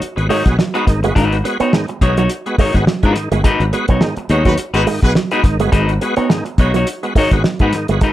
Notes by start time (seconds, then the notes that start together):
0.01 muted fingered electric bass stroke, closed hi-hat
0.16 G#1 G#3 B3 F#4, muted clean electric guitar stroke, closed hi-hat
0.29 G#2 D#3 G#3 D#4 F#4 C#5, open hi-hat
0.45 B1 G#3 B3 F#4, muted clean electric guitar stroke, kick, snare, closed hi-hat
0.57 F#3, muted clean electric guitar stroke, snare
0.74 G#3 B3 D#4 F#4 B4, muted clean electric guitar stroke, closed hi-hat
0.87 G#1 G#2 D#3, muted clean electric guitar stroke, kick, snare, closed hi-hat
1.03 G1 G#3 B3 F#4, muted clean electric guitar stroke, closed hi-hat
1.15 G#1 G#2 D#3 G#3 D#4 F#4 B4, kick, closed hi-hat
1.32 B3 F#4, closed hi-hat
1.44 G#3 B3 F#4, muted clean electric guitar stroke, closed hi-hat
1.60 B3 D#4 F#4 C#5, muted fingered electric bass stroke, closed hi-hat
1.73 G#2 D#3 G#3, muted clean electric guitar stroke, snare
1.88 muted clean electric guitar stroke, closed hi-hat
2.01 B1 G#3 B3 D#4 F#4 C#5, kick, closed hi-hat
2.17 F#3 B3 D#4 F#4 C#5, closed hi-hat
2.29 closed hi-hat
2.46 G#3 B3 F#4, muted clean electric guitar stroke, closed hi-hat
2.58 G#2 D#3 G#3 D#4 F#4 C#5, muted fingered electric bass stroke, kick, open hi-hat
2.74 G#1 G#3 B3 F#4, muted clean electric guitar stroke, kick, snare, closed hi-hat
2.87 F#3, muted clean electric guitar stroke, snare
3.03 G#2 G#3 B3 D#4 F#4 B4, muted clean electric guitar stroke, kick, closed hi-hat
3.16 G#2 D#3, muted clean electric guitar stroke, snare, closed hi-hat
3.31 G1 G#3 B3 F#4, muted clean electric guitar stroke, closed hi-hat
3.44 G#2 D#3 G#3 D#4 F#4 B4, kick, closed hi-hat
3.60 G#1 B3 F#4, closed hi-hat
3.73 G#3 B3 F#4, muted clean electric guitar stroke, closed hi-hat
3.88 B1 B3 D#4 F#4 C#5, kick, closed hi-hat
4.01 G#2 D#3 G#3, muted clean electric guitar stroke, snare
4.17 muted fingered electric bass stroke, muted clean electric guitar stroke, closed hi-hat
4.29 D#2 G#3 B3 D#4 F#4 C#5, closed hi-hat
4.45 F#3 G#3 B3 D#4 F#4 B4 C#5, kick, closed hi-hat
4.58 muted fingered electric bass stroke, muted clean electric guitar stroke, closed hi-hat
4.73 G#1 G#3 B3 D#4 F#4 B4, closed hi-hat
4.87 G#2 D#3 G#3, muted clean electric guitar stroke, open hi-hat
5.03 B1 G#3 B3 F#4 B4, muted clean electric guitar stroke, kick, snare, closed hi-hat
5.15 F#3, muted clean electric guitar stroke, snare
5.31 G#3 B3 D#4 F#4 B4, muted clean electric guitar stroke, closed hi-hat
5.43 G#1 G#2 D#3, muted clean electric guitar stroke, kick, snare, closed hi-hat
5.59 G1 G#3 B3 F#4, muted clean electric guitar stroke, closed hi-hat
5.72 G#1 G#2 D#3 G#3 D#4 F#4 B4, kick, closed hi-hat
5.89 B3 F#4, closed hi-hat
6.01 G#3 B3 F#4, muted clean electric guitar stroke, closed hi-hat
6.16 B3 D#4 F#4 C#5, muted fingered electric bass stroke, closed hi-hat
6.29 G#2 D#3 G#3, muted clean electric guitar stroke, snare
6.46 muted clean electric guitar stroke, closed hi-hat
6.58 B1 G#3 B3 D#4 F#4 C#5, kick, closed hi-hat
6.74 F#3 B3 D#4 F#4 C#5, closed hi-hat
6.87 closed hi-hat
7.03 G#3 B3 F#4, muted clean electric guitar stroke, closed hi-hat
7.15 G#2 D#3 G#3 D#4 F#4 C#5, muted fingered electric bass stroke, kick, open hi-hat
7.31 G#1 G#3 B3 F#4, muted clean electric guitar stroke, kick, snare, closed hi-hat
7.44 F#3, muted clean electric guitar stroke, snare
7.59 G#2 G#3 B3 D#4 F#4 B4, muted clean electric guitar stroke, kick, closed hi-hat
7.72 G#2 D#3, muted clean electric guitar stroke, snare, closed hi-hat
7.88 G1 G#3 B3 F#4, muted clean electric guitar stroke, closed hi-hat
8.01 G#2 D#3 G#3 D#4 F#4 B4, kick, closed hi-hat